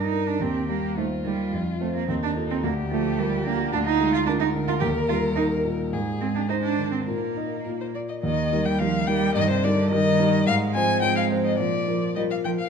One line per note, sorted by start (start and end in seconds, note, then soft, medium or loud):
0.00 0.39 G2 soft
0.00 0.28 D#4 medium
0.00 0.42 A#4 soft
0.12 0.37 D4 soft
0.12 0.38 A#4 soft
0.27 0.43 D4 soft
0.40 1.49 D#2 soft
0.40 0.68 C4 medium
0.40 0.99 G4 soft
0.68 1.14 G3 soft
0.68 0.96 A#3 soft
0.97 1.05 A3 soft
0.97 1.22 D#4 soft
0.97 2.08 F4 soft
0.97 1.22 C5 soft
1.24 1.53 D#3 soft
1.24 1.52 G3 medium
1.53 2.07 F2 soft
1.80 1.93 A3 medium
1.80 2.06 C4 soft
1.80 2.06 C5 soft
1.96 2.08 A#3 medium
2.08 2.62 D#2 soft
2.08 2.14 C4 medium
2.08 2.65 D#4 medium
2.23 2.31 D4 medium
2.36 2.61 F4 soft
2.36 2.61 A4 soft
2.50 2.56 C4 medium
2.63 3.70 D2 medium
2.63 2.72 A#3 medium
2.63 3.73 G4 medium
2.91 3.35 F3 soft
2.91 3.20 A3 medium
3.19 3.45 G3 medium
3.19 3.43 F4 soft
3.19 3.43 A#4 soft
3.45 3.73 D3 soft
3.45 3.72 A#3 medium
3.72 4.79 D2 medium
3.72 3.78 D4 medium
3.72 4.28 F4 medium
3.86 4.13 D#4 medium
4.00 4.44 G#3 soft
4.14 4.19 F4 medium
4.26 4.32 D4 medium
4.26 4.52 F4 soft
4.26 5.94 A#4 medium
4.26 4.53 A#4 soft
4.40 4.48 D#4 medium
4.55 4.82 D3 soft
4.68 4.74 F4 medium
4.80 5.90 D#2 medium
4.80 4.88 G4 medium
5.09 5.54 G3 soft
5.09 5.17 F4 medium
5.36 5.44 D#4 medium
5.36 5.62 D#4 soft
5.36 5.62 A#4 soft
5.64 5.93 A#2 soft
5.93 7.04 G#2 soft
5.93 6.50 G#4 medium
6.21 6.66 G#3 soft
6.21 6.27 C4 medium
6.35 6.41 D4 medium
6.49 6.75 D#4 soft
6.49 6.55 D#4 medium
6.49 7.06 C5 medium
6.49 6.75 C5 soft
6.63 6.91 D4 medium
6.79 7.07 D#3 soft
6.92 6.98 C4 soft
7.06 7.64 A#2 soft
7.06 7.92 A#3 soft
7.06 7.59 A#4 soft
7.37 7.63 D#4 soft
7.37 7.63 D#5 soft
7.64 8.22 A#2 soft
7.64 7.70 A#4 soft
7.81 7.86 C5 soft
7.95 8.21 F4 soft
7.95 8.00 D5 soft
7.95 8.21 D5 soft
8.09 8.15 D#5 soft
8.23 8.51 D#2 medium
8.23 8.67 D#3 medium
8.23 8.66 D#5 medium
8.52 8.77 G3 soft
8.52 8.78 D#4 soft
8.52 8.78 A#4 soft
8.65 8.82 G3 medium
8.65 8.80 G5 medium
8.79 9.07 F3 medium
8.79 9.05 G3 soft
8.79 9.06 D#4 soft
8.79 9.06 A#4 soft
8.79 9.09 F5 medium
9.07 9.35 G3 medium
9.07 9.33 G3 soft
9.07 9.33 D#4 soft
9.07 9.34 A#4 soft
9.07 9.34 G5 medium
9.35 9.63 G2 medium
9.35 9.49 D#3 medium
9.35 9.49 D#5 medium
9.49 9.66 C3 medium
9.49 9.65 C5 medium
9.64 9.94 D3 medium
9.64 9.89 G3 soft
9.64 9.89 D#4 soft
9.64 9.89 A#4 soft
9.64 9.90 D5 medium
9.91 10.47 D#3 medium
9.91 10.17 G3 soft
9.91 10.17 D#4 soft
9.91 10.17 A#4 medium
9.91 10.45 D#5 medium
10.19 10.44 G3 soft
10.19 10.45 D#4 soft
10.19 10.45 A#4 medium
10.46 10.74 G#2 medium
10.46 11.61 G#3 medium
10.46 10.54 F5 loud
10.74 11.00 F3 soft
10.74 11.00 C4 soft
10.74 11.00 C5 medium
10.74 11.01 G#5 loud
11.02 11.28 F3 soft
11.02 11.28 C4 soft
11.02 11.28 C5 medium
11.02 11.16 G5 medium
11.16 11.24 F5 medium
11.30 11.56 F3 soft
11.30 11.56 C4 soft
11.30 11.56 C5 soft
11.44 11.58 D#5 medium
11.58 11.86 A#2 soft
11.58 12.10 F3 soft
11.58 12.15 D5 medium
11.88 12.13 F3 soft
11.88 12.13 F4 soft
11.88 12.14 A#4 soft
12.15 12.42 F3 soft
12.15 12.23 G3 medium
12.15 12.42 F4 soft
12.15 12.42 A#4 soft
12.15 12.21 D#5 medium
12.30 12.36 F5 medium
12.44 12.53 F3 soft
12.44 12.69 F3 soft
12.44 12.69 F4 soft
12.44 12.69 A#4 soft
12.44 12.50 G5 medium
12.59 12.69 F5 medium